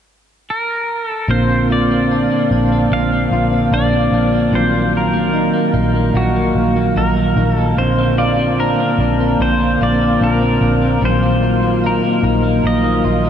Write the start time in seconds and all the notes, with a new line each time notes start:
0.50 A#4
1.06 A4
1.28 A#1 A#2 D3 A#3 C4 C5 F5
1.50 C4
1.70 F4 D5
1.91 C4
2.11 D4
2.31 C4
2.51 A#1 D4
2.72 C4
2.91 A#1 A#2 F5
3.12 C4
3.31 A#1 F4
3.53 C4
3.72 A#1 D4 D5
3.93 C4
4.12 A#1 D4
4.33 C4
4.52 A#1 A#2 D#3 F#3 C5
4.74 A#3
4.97 A#4
5.13 A#3
5.33 D#4
5.53 A#3
5.74 A#1 D#4
5.95 A#3
6.14 A#1 A#2 F#4
6.36 A#3
6.55 A#1
6.76 A#3
6.96 A#1 D#4 A#4
7.17 A#3
7.36 A#1 D#4
7.54 A#3 A4
7.77 A#1 A#2 D3 C4 C5
7.98 C4
8.18 F4 D5
8.39 C4
8.59 D4 A#4
8.80 C4
8.99 A#1 D4
9.20 C4
9.40 A#1 A#2 C5
9.61 C4
9.81 A#1 F4 D5
10.01 C4
10.21 A#1 D4 A#4
10.41 C4
10.61 A#1 D4
10.82 C4
11.02 A#1 A#2 D#3 F#3 A#3 C5
11.23 A#3
11.43 F4
11.62 A#3
11.84 D#4 A#4
12.04 A#3
12.23 A#1 D#4
12.43 A#3
12.64 A#1 A#2 D#5
12.84 A#3
13.04 A#1 F4
13.25 A#3